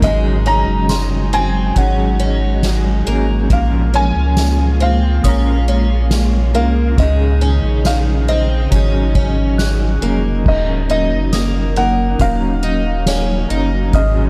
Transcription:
Already playing: D#4 D#6
0.00 G#1 G#2 C#3 F#3 G#3 D#5, kick, closed hi-hat
0.05 C#4 D#4 G#4
0.46 C#4 A#5
0.67 F#1
0.89 C6, snare, closed hi-hat, tambourine
1.33 C4 G#5
1.74 G#1 F#3 C#4 D#4 F#5, kick, closed hi-hat
1.79 G#4
2.20 C#4
2.63 snare, closed hi-hat, tambourine
3.05 G#1 A#3 C#4 D#4 G#4
3.10 F#3
3.47 A#1 A#2 F3 G#3 A#3 F4, kick, closed hi-hat
3.52 C#4 F4 A#4 F5
3.94 C#4 G#5
4.16 C#2
4.37 snare, closed hi-hat, tambourine
4.80 C4 F5
5.23 A#1 G#3 C#4 F4 D#6, kick, closed hi-hat
5.27 A#4
5.68 C#4
6.11 snare, closed hi-hat, tambourine
6.53 C2 A#3 C#4 F4 A#4 F5
6.58 G#3
6.95 C#2 C#3 D#3 G#3 D#4 D#5, kick, closed hi-hat
7.00 C#4 D#4 G#4
7.41 C#4
7.63 A#1
7.85 F5, snare, closed hi-hat, tambourine
8.28 C4 D#5
8.70 G#1 F#3 C#4 D#4, kick, closed hi-hat
8.75 G#4
9.15 C#4, kick
9.58 F#6, snare, closed hi-hat, tambourine
10.01 F1 A#3 C#4 D#4 G#4
10.06 F#3
10.43 D#1 D#3 F#3 A#3 C#4 D#4, kick, crash
10.48 C#4 D#4 A#4 D#5
10.90 D#4 D#5
11.11 F#1
11.33 A#3 D#6, snare, closed hi-hat, tambourine
11.76 A#3 F#5
12.18 D#1 F#3 C#4 D#4 F5, kick, closed hi-hat
12.23 A#4
12.63 D#4
13.06 C#4, snare, closed hi-hat, tambourine
13.48 F#1 D#4 A#4
13.53 C#4
13.91 G#1 G#2 C#3 F#3 G#3 D#4 D#6 F6, kick, closed hi-hat
13.95 C#4 D#4 G#4 D#5

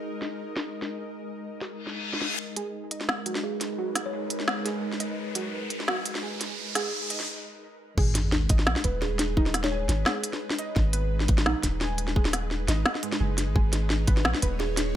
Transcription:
Already playing: G#3 D#4 A#4 D#5
0.22 snare
0.56 snare
0.82 snare
1.61 snare
1.70 reverse cymbal
1.87 snare
2.13 snare
2.21 snare
2.39 G#3 D#4 A#4 B4, riser
2.56 G#4, closed hi-hat
2.91 D#5, closed hi-hat
3.01 snare
3.09 snare
3.26 F#4, closed hi-hat
3.35 snare
3.44 G#4
3.61 snare, closed hi-hat
3.78 F#4
3.95 snare, closed hi-hat
4.06 C#5
4.13 G#4
4.30 closed hi-hat
4.40 snare
4.48 snare
4.65 G#4, snare, closed hi-hat
4.92 snare
5.00 D#5, closed hi-hat
5.35 F#4, closed hi-hat
5.70 closed hi-hat
5.80 snare
5.88 F#4, snare
6.06 closed hi-hat
6.15 snare
6.23 G#4
6.41 snare, closed hi-hat
6.75 G#4, snare, closed hi-hat
7.10 D#5, closed hi-hat
7.20 snare
7.96 G#1 G#3 D#4 G#4 B4, kick, crash, sub drop
8.15 snare, closed hi-hat
8.32 snare
8.49 G#1 D#5, kick, closed hi-hat
8.59 snare
8.67 A#1, snare
8.76 snare
8.84 D#1 B4, kick, closed hi-hat
9.02 G#4, snare
9.19 snare, closed hi-hat
9.37 D#4, kick
9.46 snare
9.54 snare, closed hi-hat
9.64 C#5, snare
9.72 G#5
9.89 G#1, snare, closed hi-hat
10.06 G#4, snare
10.24 closed hi-hat
10.33 snare
10.50 snare
10.59 D#5, closed hi-hat
10.76 G#1, kick, snare
10.93 B4, closed hi-hat
11.20 snare
11.28 G#1, kick, closed hi-hat
11.38 snare
11.46 A#1 D#4, snare
11.63 D#1, kick, snare, closed hi-hat
11.81 G#5, snare
11.98 closed hi-hat
12.08 snare
12.16 G#4, kick
12.25 snare
12.33 snare, closed hi-hat
12.51 snare
12.68 G#1 D#5, snare, closed hi-hat
12.86 snare
12.95 snare
13.03 G#3, closed hi-hat
13.12 snare
13.20 F#1 G#4
13.38 snare, closed hi-hat
13.47 G#1
13.55 G#1 G#4 C#5, kick
13.73 snare, closed hi-hat
13.90 snare
14.07 G#1 B4, kick, closed hi-hat
14.17 snare
14.25 A#1, snare
14.34 snare
14.42 D#1 B4, kick, closed hi-hat
14.60 G#4, snare
14.77 snare, closed hi-hat

